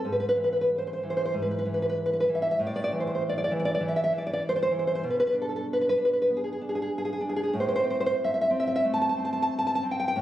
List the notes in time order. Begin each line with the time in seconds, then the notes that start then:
0.05 G#2
0.12 B4
0.20 B4
0.29 B4
0.36 E3
0.44 B4
0.53 B4
0.61 B4
0.78 C5
0.87 C5
0.93 C5
1.03 E3
1.10 C5
1.17 C5
1.26 C5
1.34 G#2
1.42 B4
1.51 B4
1.59 B4
1.66 E3
1.74 B4
1.82 B4
1.90 B4
2.06 B4
2.13 B4
2.20 B4
2.29 E3
2.35 E5
2.42 E5
2.51 E5
2.59 A2
2.67 D5
2.76 D5
2.84 D5
2.93 E3
3.00 C5
3.07 C5
3.15 C5
3.29 D5
3.38 D5
3.44 D5
3.51 E3
3.60 D5
3.65 D5
3.75 D5
3.81 E3
3.88 E5
3.96 E5
4.04 E5
4.13 E3
4.18 D5
4.27 D5
4.33 D5
4.49 C5
4.56 C5
4.63 C5
4.71 E3
4.79 C5
4.87 C5
4.95 C5
5.04 B2
5.10 B4
5.20 B4
5.27 B4
5.34 D4
5.42 A4
5.49 A4
5.56 A4
5.73 B4
5.81 B4
5.89 B4
5.98 D4
6.05 B4
6.13 B4
6.22 B4
6.30 B3
6.37 G#4
6.44 G#4
6.53 G#4
6.61 D4
6.69 G#4
6.75 G#4
6.82 G#4
6.98 G#4
7.05 G#4
7.13 G#4
7.21 D4
7.29 G#4
7.36 G#4
7.43 G#4
7.53 A2
7.60 C5
7.68 C5
7.76 C5
7.84 C4
7.90 C5
8.00 C5
8.06 C5
8.24 E5
8.34 E5
8.41 E5
8.50 C4
8.60 E5
8.67 E5
8.76 E5
8.85 A3
8.94 A5
9.02 A5
9.09 A5
9.17 C4
9.25 A5
9.33 A5
9.42 A5
9.59 A5
9.67 A5
9.75 A5
9.83 C4
9.91 G5
10.00 G5
10.08 G5
10.16 A2